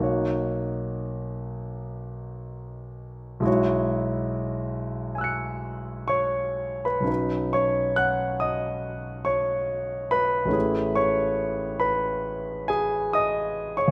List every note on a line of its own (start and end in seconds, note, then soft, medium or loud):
0.00 3.39 B1 soft
0.00 3.40 A#3 soft
0.00 3.41 D#4 soft
0.00 3.42 F#4 soft
0.00 3.43 C#5 soft
3.40 6.99 B1 soft
3.40 7.02 G#3 soft
3.40 7.03 E4 soft
3.45 7.04 F#4 soft
3.45 6.08 C#5 soft
5.15 7.05 G#5 soft
5.15 7.07 E6 soft
5.21 7.08 F#6 soft
5.21 7.09 C#7 soft
6.08 6.82 C#5 soft
6.08 6.85 C#6 medium
6.85 7.06 B4 soft
6.85 7.53 B5 soft
7.00 10.47 B1 soft
7.00 10.48 F#3 soft
7.00 10.47 C#4 soft
7.06 10.50 D#4 soft
7.06 10.10 B4 soft
7.53 7.95 C#5 soft
7.53 7.97 C#6 medium
7.96 8.38 F#5 soft
7.96 8.40 F#6 medium
8.40 9.22 D#5 soft
8.40 9.26 D#6 medium
9.25 10.08 C#5 soft
9.25 10.11 C#6 medium
10.11 10.93 B4 soft
10.11 10.97 B5 medium
10.45 13.88 A1 soft
10.45 13.90 A3 soft
10.45 13.90 C#4 soft
10.51 13.91 E4 soft
10.51 12.68 G#4 soft
10.95 11.77 C#5 medium
10.95 11.80 C#6 medium
11.80 12.65 B4 soft
11.80 12.68 B5 medium
12.68 13.12 G#4 soft
12.68 13.14 G#5 medium
13.13 13.73 D#5 medium
13.13 13.76 D#6 medium
13.77 13.91 C#5 soft
13.77 13.91 C#6 medium
13.88 13.91 E2 soft